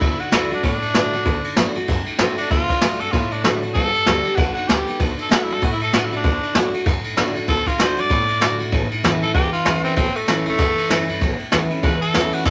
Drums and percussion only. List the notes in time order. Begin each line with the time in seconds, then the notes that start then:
0.01 kick, ride
0.19 ride
0.32 snare, ride
0.51 ride
0.63 kick, ride
0.82 ride
0.94 snare, ride
1.13 ride
1.25 kick, ride
1.44 ride
1.56 snare, ride
1.75 ride
1.88 kick, ride
2.06 ride
2.18 snare, ride
2.38 ride
2.51 kick, ride
2.69 kick, ride
2.81 snare, ride
3.00 ride
3.13 kick, ride
3.31 ride
3.44 snare, ride
3.62 ride
3.75 kick, ride
3.94 ride
4.06 snare, ride
4.24 ride
4.37 kick, snare, ride
4.56 ride
4.69 snare, ride
4.88 ride
5.00 kick, ride
5.18 ride
5.31 snare, ride
5.50 ride
5.62 kick, ride
5.81 ride
5.93 snare, ride
6.12 ride
6.24 kick, ride
6.43 ride
6.55 snare, ride
6.74 ride
6.86 kick, snare, ride
7.04 ride
7.17 snare, ride
7.35 ride
7.48 kick, ride
7.66 kick, ride
7.79 snare, ride
7.97 ride
8.10 kick, ride
8.28 ride
8.41 snare, ride
8.60 ride
8.72 kick, ride
8.91 ride
9.04 snare, ride
9.22 ride
9.35 kick, ride
9.53 ride
9.65 snare, ride
9.84 ride
9.97 kick, ride
10.15 ride
10.28 snare, ride
10.45 ride
10.59 kick, snare, ride
10.78 ride
10.90 snare, ride
11.09 ride
11.21 kick, ride
11.39 ride
11.52 snare, ride
11.70 ride
11.83 kick, ride
12.02 ride
12.14 snare, ride
12.32 ride
12.45 kick, snare